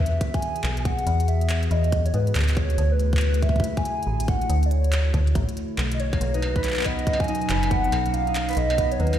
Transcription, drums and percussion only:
0.00 kick medium
0.06 closed hi-hat medium
0.21 kick loud
0.21 closed hi-hat medium
0.34 kick loud
0.34 closed hi-hat medium
0.42 closed hi-hat medium
0.56 closed hi-hat soft
0.64 clap loud
0.77 closed hi-hat medium
0.85 kick loud
0.85 closed hi-hat medium
0.99 closed hi-hat soft
1.07 closed hi-hat loud
1.20 closed hi-hat medium
1.28 closed hi-hat medium
1.41 closed hi-hat soft
1.50 clap loud
1.50 closed hi-hat medium
1.63 closed hi-hat medium
1.71 closed hi-hat medium
1.84 closed hi-hat soft
1.92 kick loud
1.92 closed hi-hat medium
2.06 closed hi-hat medium
2.14 closed hi-hat medium
2.27 closed hi-hat soft
2.35 clap loud
2.35 closed hi-hat medium
2.40 clap medium
2.42 clap medium
2.48 clap medium
2.48 closed hi-hat medium
2.54 kick loud
2.54 clap soft
2.54 closed hi-hat medium
2.70 closed hi-hat soft
2.78 closed hi-hat loud
3.00 closed hi-hat medium
3.13 kick medium
3.13 closed hi-hat soft
3.17 clap loud
3.21 closed hi-hat medium
3.34 closed hi-hat medium
3.42 kick medium
3.42 closed hi-hat medium
3.49 kick medium
3.56 kick medium
3.56 closed hi-hat soft
3.60 kick loud
3.64 closed hi-hat medium
3.77 kick loud
3.77 closed hi-hat medium
3.85 closed hi-hat medium
4.03 closed hi-hat soft
4.20 closed hi-hat medium
4.28 kick loud
4.28 closed hi-hat soft
4.41 closed hi-hat soft
4.50 closed hi-hat medium
4.63 closed hi-hat medium
4.71 closed hi-hat soft
4.84 closed hi-hat soft
4.93 clap loud
4.93 closed hi-hat medium
5.14 kick medium
5.14 closed hi-hat medium
5.27 closed hi-hat soft
5.35 kick loud
5.35 closed hi-hat medium
5.49 closed hi-hat medium
5.57 closed hi-hat soft
5.78 clap loud
5.92 closed hi-hat medium
6.00 closed hi-hat soft
6.13 kick loud
6.13 closed hi-hat soft
6.13 struck metal soft
6.21 closed hi-hat medium
6.34 closed hi-hat soft
6.42 closed hi-hat soft
6.42 struck metal medium
6.56 kick medium
6.56 closed hi-hat soft
6.64 clap medium
6.64 closed hi-hat medium
6.67 clap medium
6.71 clap medium
6.74 clap medium
6.77 clap medium
6.79 clap medium
6.81 clap loud
6.83 kick medium
6.83 clap loud
6.83 closed hi-hat soft
6.83 struck metal soft
6.99 closed hi-hat soft
7.07 kick loud
7.07 closed hi-hat medium
7.13 struck metal medium
7.20 kick loud
7.20 closed hi-hat soft
7.24 closed hi-hat soft
7.28 closed hi-hat medium
7.35 closed hi-hat soft
7.42 closed hi-hat soft
7.50 clap loud
7.50 closed hi-hat medium
7.63 closed hi-hat soft
7.63 struck metal soft
7.71 kick loud
7.71 closed hi-hat soft
7.84 closed hi-hat soft
7.92 closed hi-hat medium
7.92 struck metal medium
8.06 closed hi-hat soft
8.14 closed hi-hat soft
8.27 closed hi-hat soft
8.35 clap loud
8.35 closed hi-hat medium
8.35 struck metal medium
8.49 closed hi-hat soft
8.51 closed hi-hat soft
8.53 closed hi-hat soft
8.55 closed hi-hat soft
8.57 closed hi-hat soft
8.70 closed hi-hat soft
8.70 struck metal medium
8.78 kick loud
8.78 closed hi-hat medium
8.92 closed hi-hat medium
9.00 closed hi-hat soft
9.07 closed hi-hat soft
9.13 closed hi-hat soft
9.13 struck metal medium

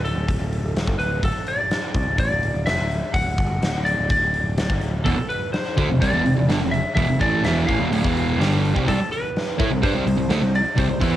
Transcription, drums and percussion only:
0.05 open hi-hat soft
0.28 kick loud
0.28 open hi-hat medium
0.53 open hi-hat soft
0.77 snare loud
0.77 open hi-hat medium
0.88 kick loud
1.00 open hi-hat soft
1.23 kick loud
1.23 open hi-hat medium
1.47 open hi-hat soft
1.71 snare loud
1.71 open hi-hat medium
1.95 kick loud
1.95 open hi-hat medium
2.18 kick loud
2.18 open hi-hat medium
2.43 open hi-hat soft
2.67 snare loud
2.67 open hi-hat medium
2.91 open hi-hat soft
3.14 kick medium
3.14 open hi-hat medium
3.38 kick loud
3.38 open hi-hat medium
3.63 snare loud
3.63 open hi-hat medium
3.86 open hi-hat medium
4.10 kick loud
4.10 open hi-hat medium
4.34 open hi-hat soft
4.58 snare loud
4.58 open hi-hat medium
4.70 kick medium
4.82 open hi-hat soft
5.06 kick loud
5.06 open hi-hat medium
5.30 open hi-hat soft
5.54 snare medium
5.54 open hi-hat medium
5.78 kick loud
5.78 open hi-hat soft
6.02 kick loud
6.02 open hi-hat medium
6.25 open hi-hat soft
6.50 snare loud
6.50 open hi-hat medium
6.74 open hi-hat soft
6.97 kick loud
6.97 open hi-hat medium
7.21 kick loud
7.21 open hi-hat soft
7.44 snare medium
7.44 open hi-hat medium
7.69 kick medium
7.69 open hi-hat soft
7.93 open hi-hat medium
8.04 kick loud
8.17 open hi-hat soft
8.41 snare loud
8.41 open hi-hat medium
8.65 open hi-hat soft
8.76 kick medium
8.88 kick medium
8.88 open hi-hat medium
9.13 open hi-hat soft
9.36 snare loud
9.36 open hi-hat medium
9.59 kick loud
9.59 open hi-hat soft
9.83 kick loud
9.83 open hi-hat medium
10.07 open hi-hat medium
10.30 snare loud
10.30 open hi-hat medium
10.55 open hi-hat soft
10.78 kick loud
10.78 open hi-hat medium
11.02 kick loud
11.02 open hi-hat medium

